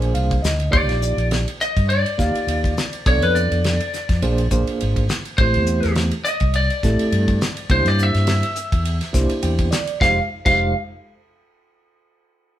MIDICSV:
0, 0, Header, 1, 6, 480
1, 0, Start_track
1, 0, Tempo, 579710
1, 606, Time_signature, 4, 2, 24, 8
1, 10426, End_track
2, 0, Start_track
2, 0, Title_t, "Lead electric guitar"
2, 0, Program_c, 0, 29
2, 605, Note_on_c, 0, 74, 88
2, 1054, Note_off_c, 0, 74, 0
2, 1335, Note_on_c, 0, 75, 93
2, 1562, Note_off_c, 0, 75, 0
2, 1565, Note_on_c, 0, 74, 95
2, 2541, Note_off_c, 0, 74, 0
2, 2544, Note_on_c, 0, 73, 78
2, 2662, Note_off_c, 0, 73, 0
2, 2675, Note_on_c, 0, 71, 71
2, 2774, Note_on_c, 0, 74, 81
2, 2781, Note_off_c, 0, 71, 0
2, 3702, Note_off_c, 0, 74, 0
2, 4455, Note_on_c, 0, 72, 100
2, 4903, Note_off_c, 0, 72, 0
2, 5171, Note_on_c, 0, 75, 83
2, 5421, Note_off_c, 0, 75, 0
2, 5429, Note_on_c, 0, 74, 80
2, 6382, Note_off_c, 0, 74, 0
2, 6386, Note_on_c, 0, 72, 83
2, 6524, Note_off_c, 0, 72, 0
2, 6524, Note_on_c, 0, 74, 81
2, 6648, Note_off_c, 0, 74, 0
2, 6648, Note_on_c, 0, 76, 90
2, 7590, Note_off_c, 0, 76, 0
2, 8293, Note_on_c, 0, 77, 67
2, 8435, Note_off_c, 0, 77, 0
2, 8664, Note_on_c, 0, 77, 76
2, 8885, Note_off_c, 0, 77, 0
2, 10426, End_track
3, 0, Start_track
3, 0, Title_t, "Reed electric piano"
3, 0, Program_c, 1, 4
3, 0, Note_on_c, 1, 58, 75
3, 0, Note_on_c, 1, 62, 64
3, 0, Note_on_c, 1, 65, 68
3, 0, Note_on_c, 1, 68, 65
3, 0, Note_on_c, 1, 72, 84
3, 0, Note_on_c, 1, 80, 58
3, 103, Note_off_c, 1, 80, 0
3, 118, Note_on_c, 1, 77, 62
3, 329, Note_off_c, 1, 62, 0
3, 330, Note_off_c, 1, 58, 0
3, 330, Note_off_c, 1, 65, 0
3, 331, Note_off_c, 1, 68, 0
3, 334, Note_off_c, 1, 72, 0
3, 345, Note_off_c, 1, 77, 0
3, 349, Note_on_c, 1, 75, 61
3, 580, Note_off_c, 1, 75, 0
3, 587, Note_on_c, 1, 58, 61
3, 589, Note_on_c, 1, 65, 57
3, 589, Note_on_c, 1, 67, 58
3, 592, Note_on_c, 1, 63, 57
3, 592, Note_on_c, 1, 74, 71
3, 1206, Note_off_c, 1, 58, 0
3, 1207, Note_off_c, 1, 65, 0
3, 1207, Note_off_c, 1, 67, 0
3, 1208, Note_off_c, 1, 63, 0
3, 1208, Note_off_c, 1, 74, 0
3, 1804, Note_on_c, 1, 58, 62
3, 1808, Note_on_c, 1, 65, 58
3, 1810, Note_on_c, 1, 63, 53
3, 1811, Note_on_c, 1, 67, 58
3, 1815, Note_on_c, 1, 77, 69
3, 2259, Note_off_c, 1, 58, 0
3, 2261, Note_off_c, 1, 65, 0
3, 2262, Note_off_c, 1, 63, 0
3, 2262, Note_off_c, 1, 67, 0
3, 2264, Note_off_c, 1, 77, 0
3, 2538, Note_on_c, 1, 62, 62
3, 2538, Note_on_c, 1, 65, 56
3, 2540, Note_on_c, 1, 59, 65
3, 2541, Note_on_c, 1, 74, 72
3, 2543, Note_on_c, 1, 69, 62
3, 3144, Note_off_c, 1, 62, 0
3, 3144, Note_off_c, 1, 65, 0
3, 3145, Note_off_c, 1, 59, 0
3, 3145, Note_off_c, 1, 74, 0
3, 3146, Note_off_c, 1, 69, 0
3, 3497, Note_on_c, 1, 58, 77
3, 3498, Note_on_c, 1, 62, 77
3, 3501, Note_on_c, 1, 72, 91
3, 3502, Note_on_c, 1, 65, 76
3, 3504, Note_on_c, 1, 68, 78
3, 3693, Note_off_c, 1, 58, 0
3, 3693, Note_off_c, 1, 62, 0
3, 3695, Note_off_c, 1, 65, 0
3, 3695, Note_off_c, 1, 72, 0
3, 3697, Note_off_c, 1, 68, 0
3, 3736, Note_on_c, 1, 65, 68
3, 3737, Note_on_c, 1, 58, 78
3, 3738, Note_on_c, 1, 72, 81
3, 3741, Note_on_c, 1, 62, 68
3, 3744, Note_on_c, 1, 68, 64
3, 4186, Note_off_c, 1, 65, 0
3, 4187, Note_off_c, 1, 58, 0
3, 4187, Note_off_c, 1, 72, 0
3, 4189, Note_off_c, 1, 62, 0
3, 4190, Note_off_c, 1, 68, 0
3, 4470, Note_on_c, 1, 57, 64
3, 4473, Note_on_c, 1, 67, 57
3, 4474, Note_on_c, 1, 60, 61
3, 4476, Note_on_c, 1, 64, 60
3, 4480, Note_on_c, 1, 72, 66
3, 5070, Note_off_c, 1, 57, 0
3, 5072, Note_off_c, 1, 60, 0
3, 5072, Note_off_c, 1, 67, 0
3, 5073, Note_off_c, 1, 64, 0
3, 5075, Note_off_c, 1, 72, 0
3, 5659, Note_on_c, 1, 64, 59
3, 5661, Note_on_c, 1, 57, 67
3, 5661, Note_on_c, 1, 60, 58
3, 5663, Note_on_c, 1, 67, 58
3, 5668, Note_on_c, 1, 69, 73
3, 6107, Note_off_c, 1, 64, 0
3, 6108, Note_off_c, 1, 57, 0
3, 6108, Note_off_c, 1, 60, 0
3, 6109, Note_off_c, 1, 67, 0
3, 6112, Note_off_c, 1, 69, 0
3, 6375, Note_on_c, 1, 58, 65
3, 6379, Note_on_c, 1, 67, 60
3, 6380, Note_on_c, 1, 62, 59
3, 6382, Note_on_c, 1, 64, 61
3, 6382, Note_on_c, 1, 72, 71
3, 6981, Note_off_c, 1, 58, 0
3, 6983, Note_off_c, 1, 67, 0
3, 6984, Note_off_c, 1, 62, 0
3, 6985, Note_off_c, 1, 64, 0
3, 6985, Note_off_c, 1, 72, 0
3, 7561, Note_on_c, 1, 62, 66
3, 7561, Note_on_c, 1, 64, 70
3, 7564, Note_on_c, 1, 58, 74
3, 7566, Note_on_c, 1, 67, 68
3, 7570, Note_on_c, 1, 72, 80
3, 7806, Note_on_c, 1, 79, 62
3, 8016, Note_off_c, 1, 62, 0
3, 8016, Note_off_c, 1, 64, 0
3, 8017, Note_off_c, 1, 58, 0
3, 8018, Note_off_c, 1, 67, 0
3, 8020, Note_off_c, 1, 72, 0
3, 8032, Note_off_c, 1, 79, 0
3, 8039, Note_on_c, 1, 74, 60
3, 8267, Note_off_c, 1, 74, 0
3, 8286, Note_on_c, 1, 65, 65
3, 8287, Note_on_c, 1, 56, 71
3, 8287, Note_on_c, 1, 72, 80
3, 8288, Note_on_c, 1, 63, 66
3, 8291, Note_on_c, 1, 67, 62
3, 8431, Note_off_c, 1, 56, 0
3, 8431, Note_off_c, 1, 63, 0
3, 8431, Note_off_c, 1, 65, 0
3, 8431, Note_off_c, 1, 72, 0
3, 8433, Note_off_c, 1, 67, 0
3, 8655, Note_on_c, 1, 72, 72
3, 8656, Note_on_c, 1, 63, 63
3, 8657, Note_on_c, 1, 67, 65
3, 8658, Note_on_c, 1, 65, 63
3, 8661, Note_on_c, 1, 56, 69
3, 8880, Note_off_c, 1, 72, 0
3, 8881, Note_off_c, 1, 63, 0
3, 8882, Note_off_c, 1, 65, 0
3, 8882, Note_off_c, 1, 67, 0
3, 8884, Note_off_c, 1, 56, 0
3, 10426, End_track
4, 0, Start_track
4, 0, Title_t, "Fretless electric bass"
4, 0, Program_c, 2, 35
4, 0, Note_on_c, 2, 34, 71
4, 101, Note_off_c, 2, 34, 0
4, 124, Note_on_c, 2, 36, 67
4, 341, Note_off_c, 2, 36, 0
4, 362, Note_on_c, 2, 38, 73
4, 580, Note_off_c, 2, 38, 0
4, 609, Note_on_c, 2, 39, 84
4, 727, Note_off_c, 2, 39, 0
4, 727, Note_on_c, 2, 34, 86
4, 956, Note_off_c, 2, 34, 0
4, 965, Note_on_c, 2, 34, 77
4, 1196, Note_off_c, 2, 34, 0
4, 1463, Note_on_c, 2, 43, 85
4, 1686, Note_off_c, 2, 43, 0
4, 1812, Note_on_c, 2, 39, 80
4, 1934, Note_off_c, 2, 39, 0
4, 2047, Note_on_c, 2, 39, 78
4, 2273, Note_off_c, 2, 39, 0
4, 2535, Note_on_c, 2, 35, 89
4, 2664, Note_off_c, 2, 35, 0
4, 2664, Note_on_c, 2, 41, 90
4, 2888, Note_off_c, 2, 41, 0
4, 2910, Note_on_c, 2, 41, 70
4, 3131, Note_off_c, 2, 41, 0
4, 3390, Note_on_c, 2, 41, 88
4, 3489, Note_off_c, 2, 41, 0
4, 3494, Note_on_c, 2, 34, 90
4, 3718, Note_off_c, 2, 34, 0
4, 3737, Note_on_c, 2, 34, 79
4, 3859, Note_off_c, 2, 34, 0
4, 3993, Note_on_c, 2, 32, 76
4, 4208, Note_off_c, 2, 32, 0
4, 4456, Note_on_c, 2, 33, 90
4, 4597, Note_on_c, 2, 40, 92
4, 4609, Note_off_c, 2, 33, 0
4, 4816, Note_off_c, 2, 40, 0
4, 4839, Note_on_c, 2, 40, 78
4, 5057, Note_off_c, 2, 40, 0
4, 5310, Note_on_c, 2, 36, 83
4, 5532, Note_off_c, 2, 36, 0
4, 5660, Note_on_c, 2, 33, 85
4, 5780, Note_off_c, 2, 33, 0
4, 5896, Note_on_c, 2, 43, 76
4, 6119, Note_off_c, 2, 43, 0
4, 6371, Note_on_c, 2, 36, 93
4, 6508, Note_off_c, 2, 36, 0
4, 6508, Note_on_c, 2, 43, 89
4, 6730, Note_off_c, 2, 43, 0
4, 6745, Note_on_c, 2, 43, 74
4, 6969, Note_off_c, 2, 43, 0
4, 7224, Note_on_c, 2, 40, 85
4, 7447, Note_off_c, 2, 40, 0
4, 7570, Note_on_c, 2, 36, 77
4, 7693, Note_off_c, 2, 36, 0
4, 7810, Note_on_c, 2, 40, 76
4, 8034, Note_off_c, 2, 40, 0
4, 8289, Note_on_c, 2, 29, 85
4, 8432, Note_off_c, 2, 29, 0
4, 8661, Note_on_c, 2, 29, 80
4, 8884, Note_off_c, 2, 29, 0
4, 10426, End_track
5, 0, Start_track
5, 0, Title_t, "Muted fretless electric bass strokes"
5, 1941, Note_on_c, 9, 29, 31
5, 2024, Note_off_c, 9, 29, 0
5, 10426, End_track
6, 0, Start_track
6, 0, Title_t, "Drums"
6, 16, Note_on_c, 9, 51, 53
6, 99, Note_off_c, 9, 51, 0
6, 122, Note_on_c, 9, 51, 62
6, 205, Note_off_c, 9, 51, 0
6, 257, Note_on_c, 9, 51, 50
6, 258, Note_on_c, 9, 36, 70
6, 339, Note_off_c, 9, 51, 0
6, 340, Note_off_c, 9, 36, 0
6, 365, Note_on_c, 9, 44, 74
6, 372, Note_on_c, 9, 38, 102
6, 448, Note_off_c, 9, 44, 0
6, 455, Note_off_c, 9, 38, 0
6, 494, Note_on_c, 9, 51, 55
6, 577, Note_off_c, 9, 51, 0
6, 604, Note_on_c, 9, 51, 71
6, 606, Note_on_c, 9, 36, 100
6, 687, Note_off_c, 9, 51, 0
6, 689, Note_off_c, 9, 36, 0
6, 736, Note_on_c, 9, 51, 48
6, 744, Note_on_c, 9, 38, 28
6, 819, Note_off_c, 9, 51, 0
6, 827, Note_off_c, 9, 38, 0
6, 845, Note_on_c, 9, 44, 74
6, 928, Note_off_c, 9, 44, 0
6, 979, Note_on_c, 9, 51, 52
6, 1062, Note_off_c, 9, 51, 0
6, 1086, Note_on_c, 9, 51, 66
6, 1093, Note_on_c, 9, 38, 89
6, 1169, Note_off_c, 9, 51, 0
6, 1176, Note_off_c, 9, 38, 0
6, 1223, Note_on_c, 9, 51, 62
6, 1306, Note_off_c, 9, 51, 0
6, 1329, Note_on_c, 9, 44, 76
6, 1412, Note_off_c, 9, 44, 0
6, 1462, Note_on_c, 9, 36, 75
6, 1465, Note_on_c, 9, 51, 56
6, 1545, Note_off_c, 9, 36, 0
6, 1547, Note_off_c, 9, 51, 0
6, 1572, Note_on_c, 9, 51, 68
6, 1655, Note_off_c, 9, 51, 0
6, 1706, Note_on_c, 9, 51, 51
6, 1789, Note_off_c, 9, 51, 0
6, 1813, Note_on_c, 9, 36, 70
6, 1816, Note_on_c, 9, 44, 77
6, 1824, Note_on_c, 9, 38, 30
6, 1896, Note_off_c, 9, 36, 0
6, 1899, Note_off_c, 9, 44, 0
6, 1907, Note_off_c, 9, 38, 0
6, 1949, Note_on_c, 9, 51, 57
6, 2032, Note_off_c, 9, 51, 0
6, 2056, Note_on_c, 9, 51, 77
6, 2139, Note_off_c, 9, 51, 0
6, 2187, Note_on_c, 9, 36, 70
6, 2196, Note_on_c, 9, 51, 53
6, 2270, Note_off_c, 9, 36, 0
6, 2278, Note_off_c, 9, 51, 0
6, 2295, Note_on_c, 9, 44, 77
6, 2303, Note_on_c, 9, 38, 95
6, 2378, Note_off_c, 9, 44, 0
6, 2386, Note_off_c, 9, 38, 0
6, 2425, Note_on_c, 9, 51, 58
6, 2508, Note_off_c, 9, 51, 0
6, 2535, Note_on_c, 9, 36, 97
6, 2537, Note_on_c, 9, 51, 77
6, 2618, Note_off_c, 9, 36, 0
6, 2620, Note_off_c, 9, 51, 0
6, 2669, Note_on_c, 9, 51, 58
6, 2752, Note_off_c, 9, 51, 0
6, 2777, Note_on_c, 9, 44, 69
6, 2860, Note_off_c, 9, 44, 0
6, 2911, Note_on_c, 9, 51, 56
6, 2994, Note_off_c, 9, 51, 0
6, 3017, Note_on_c, 9, 51, 76
6, 3024, Note_on_c, 9, 38, 97
6, 3099, Note_off_c, 9, 51, 0
6, 3107, Note_off_c, 9, 38, 0
6, 3150, Note_on_c, 9, 51, 62
6, 3233, Note_off_c, 9, 51, 0
6, 3258, Note_on_c, 9, 44, 75
6, 3266, Note_on_c, 9, 38, 32
6, 3341, Note_off_c, 9, 44, 0
6, 3348, Note_off_c, 9, 38, 0
6, 3388, Note_on_c, 9, 36, 76
6, 3389, Note_on_c, 9, 51, 58
6, 3396, Note_on_c, 9, 38, 28
6, 3470, Note_off_c, 9, 36, 0
6, 3471, Note_off_c, 9, 51, 0
6, 3479, Note_off_c, 9, 38, 0
6, 3497, Note_on_c, 9, 51, 75
6, 3580, Note_off_c, 9, 51, 0
6, 3627, Note_on_c, 9, 51, 58
6, 3710, Note_off_c, 9, 51, 0
6, 3732, Note_on_c, 9, 44, 81
6, 3735, Note_on_c, 9, 36, 71
6, 3815, Note_off_c, 9, 44, 0
6, 3818, Note_off_c, 9, 36, 0
6, 3869, Note_on_c, 9, 51, 52
6, 3952, Note_off_c, 9, 51, 0
6, 3979, Note_on_c, 9, 51, 68
6, 4062, Note_off_c, 9, 51, 0
6, 4109, Note_on_c, 9, 36, 68
6, 4110, Note_on_c, 9, 51, 53
6, 4192, Note_off_c, 9, 36, 0
6, 4193, Note_off_c, 9, 51, 0
6, 4215, Note_on_c, 9, 44, 78
6, 4222, Note_on_c, 9, 38, 95
6, 4298, Note_off_c, 9, 44, 0
6, 4305, Note_off_c, 9, 38, 0
6, 4349, Note_on_c, 9, 51, 54
6, 4432, Note_off_c, 9, 51, 0
6, 4453, Note_on_c, 9, 51, 69
6, 4456, Note_on_c, 9, 36, 101
6, 4536, Note_off_c, 9, 51, 0
6, 4539, Note_off_c, 9, 36, 0
6, 4586, Note_on_c, 9, 51, 49
6, 4669, Note_off_c, 9, 51, 0
6, 4690, Note_on_c, 9, 44, 78
6, 4773, Note_off_c, 9, 44, 0
6, 4825, Note_on_c, 9, 51, 52
6, 4833, Note_on_c, 9, 38, 28
6, 4908, Note_off_c, 9, 51, 0
6, 4916, Note_off_c, 9, 38, 0
6, 4930, Note_on_c, 9, 51, 66
6, 4938, Note_on_c, 9, 38, 99
6, 5013, Note_off_c, 9, 51, 0
6, 5020, Note_off_c, 9, 38, 0
6, 5062, Note_on_c, 9, 51, 55
6, 5145, Note_off_c, 9, 51, 0
6, 5172, Note_on_c, 9, 44, 80
6, 5255, Note_off_c, 9, 44, 0
6, 5299, Note_on_c, 9, 51, 50
6, 5306, Note_on_c, 9, 36, 74
6, 5382, Note_off_c, 9, 51, 0
6, 5389, Note_off_c, 9, 36, 0
6, 5412, Note_on_c, 9, 51, 72
6, 5495, Note_off_c, 9, 51, 0
6, 5549, Note_on_c, 9, 51, 52
6, 5632, Note_off_c, 9, 51, 0
6, 5657, Note_on_c, 9, 36, 72
6, 5657, Note_on_c, 9, 44, 75
6, 5665, Note_on_c, 9, 38, 29
6, 5740, Note_off_c, 9, 36, 0
6, 5740, Note_off_c, 9, 44, 0
6, 5748, Note_off_c, 9, 38, 0
6, 5789, Note_on_c, 9, 51, 59
6, 5872, Note_off_c, 9, 51, 0
6, 5898, Note_on_c, 9, 51, 68
6, 5981, Note_off_c, 9, 51, 0
6, 6026, Note_on_c, 9, 51, 54
6, 6027, Note_on_c, 9, 36, 67
6, 6109, Note_off_c, 9, 51, 0
6, 6110, Note_off_c, 9, 36, 0
6, 6136, Note_on_c, 9, 44, 82
6, 6144, Note_on_c, 9, 38, 102
6, 6219, Note_off_c, 9, 44, 0
6, 6227, Note_off_c, 9, 38, 0
6, 6265, Note_on_c, 9, 51, 59
6, 6348, Note_off_c, 9, 51, 0
6, 6372, Note_on_c, 9, 51, 75
6, 6373, Note_on_c, 9, 36, 100
6, 6455, Note_off_c, 9, 36, 0
6, 6455, Note_off_c, 9, 51, 0
6, 6505, Note_on_c, 9, 51, 57
6, 6512, Note_on_c, 9, 38, 27
6, 6588, Note_off_c, 9, 51, 0
6, 6595, Note_off_c, 9, 38, 0
6, 6612, Note_on_c, 9, 44, 73
6, 6695, Note_off_c, 9, 44, 0
6, 6744, Note_on_c, 9, 51, 62
6, 6752, Note_on_c, 9, 38, 29
6, 6827, Note_off_c, 9, 51, 0
6, 6834, Note_off_c, 9, 38, 0
6, 6847, Note_on_c, 9, 51, 78
6, 6854, Note_on_c, 9, 38, 91
6, 6929, Note_off_c, 9, 51, 0
6, 6937, Note_off_c, 9, 38, 0
6, 6980, Note_on_c, 9, 51, 64
6, 7062, Note_off_c, 9, 51, 0
6, 7086, Note_on_c, 9, 44, 87
6, 7169, Note_off_c, 9, 44, 0
6, 7223, Note_on_c, 9, 36, 78
6, 7224, Note_on_c, 9, 51, 59
6, 7305, Note_off_c, 9, 36, 0
6, 7307, Note_off_c, 9, 51, 0
6, 7331, Note_on_c, 9, 51, 74
6, 7413, Note_off_c, 9, 51, 0
6, 7459, Note_on_c, 9, 51, 58
6, 7467, Note_on_c, 9, 38, 27
6, 7542, Note_off_c, 9, 51, 0
6, 7550, Note_off_c, 9, 38, 0
6, 7568, Note_on_c, 9, 44, 75
6, 7569, Note_on_c, 9, 36, 69
6, 7575, Note_on_c, 9, 38, 30
6, 7651, Note_off_c, 9, 44, 0
6, 7652, Note_off_c, 9, 36, 0
6, 7658, Note_off_c, 9, 38, 0
6, 7696, Note_on_c, 9, 51, 58
6, 7779, Note_off_c, 9, 51, 0
6, 7805, Note_on_c, 9, 51, 76
6, 7888, Note_off_c, 9, 51, 0
6, 7937, Note_on_c, 9, 51, 59
6, 7939, Note_on_c, 9, 36, 69
6, 8020, Note_off_c, 9, 51, 0
6, 8022, Note_off_c, 9, 36, 0
6, 8047, Note_on_c, 9, 44, 79
6, 8054, Note_on_c, 9, 38, 98
6, 8129, Note_off_c, 9, 44, 0
6, 8137, Note_off_c, 9, 38, 0
6, 8175, Note_on_c, 9, 51, 57
6, 8258, Note_off_c, 9, 51, 0
6, 8288, Note_on_c, 9, 36, 91
6, 8295, Note_on_c, 9, 38, 77
6, 8371, Note_off_c, 9, 36, 0
6, 8377, Note_off_c, 9, 38, 0
6, 8659, Note_on_c, 9, 36, 94
6, 8660, Note_on_c, 9, 49, 78
6, 8742, Note_off_c, 9, 36, 0
6, 8743, Note_off_c, 9, 49, 0
6, 10426, End_track
0, 0, End_of_file